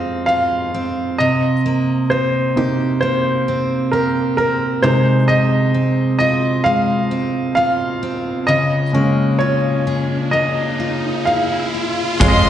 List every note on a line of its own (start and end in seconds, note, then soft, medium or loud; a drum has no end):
0.00 1.20 F2 medium
0.00 1.29 G#3 soft
0.00 0.74 C4 soft
0.00 0.27 F4 soft
0.00 1.18 D#5 medium
0.00 0.25 F5 medium
0.26 1.29 F4 soft
0.26 1.22 F5 medium
0.74 1.69 C4 soft
1.18 4.82 C3 medium
1.18 2.13 D#5 medium
1.66 3.01 A#3 soft
2.10 3.48 C4 soft
2.10 2.99 C5 medium
2.56 3.89 C3 soft
2.56 3.89 A#3 soft
2.56 3.89 D#4 soft
2.56 3.92 G4 soft
3.01 4.93 A#3 soft
3.01 3.95 C5 medium
3.48 4.38 C4 soft
3.92 4.93 G4 medium
3.92 4.36 A#4 medium
4.37 5.74 C4 soft
4.37 4.85 A#4 medium
4.83 6.16 C3 soft
4.83 8.48 C3 medium
4.83 6.17 G#3 soft
4.83 6.17 D#4 soft
4.83 5.30 C5 medium
4.83 riser medium
5.28 6.66 G#3 medium
5.28 6.17 D#5 medium
5.74 7.10 C4 soft
6.19 7.56 F4 medium
6.19 6.67 D#5 medium
6.64 8.94 G#3 medium
6.64 7.54 F5 medium
7.11 8.02 C4 soft
7.55 9.40 F4 medium
7.55 8.51 F5 medium
8.03 8.58 C4 soft
8.47 12.21 C#3 medium
8.47 9.43 D#5 medium
8.93 9.55 C#3 soft
8.93 9.56 G#3 soft
8.93 10.32 A#3 soft
8.93 9.56 C#4 soft
9.39 10.79 F4 soft
9.39 10.35 C#5 medium
9.87 11.27 G#4 medium
10.31 12.30 A#3 soft
10.31 11.29 D#5 medium
10.80 11.74 F4 soft
11.25 12.22 G#4 soft
11.25 11.93 F5 medium
11.74 12.44 F4 soft
12.20 12.49 F2 loud
12.20 12.49 F2 medium
12.20 12.49 G#3 medium
12.20 12.49 C4 medium
12.20 12.49 F4 medium
12.20 12.49 G#4 medium
12.20 12.28 C#5 medium
12.20 12.49 D#5 medium
12.20 12.49 F5 medium
12.20 12.49 C6 medium
12.20 12.49 D#6 medium
12.20 kick loud
12.20 crash medium
12.20 tambourine soft
12.20 impact medium
12.28 12.49 D#5 medium
12.44 12.49 C4 medium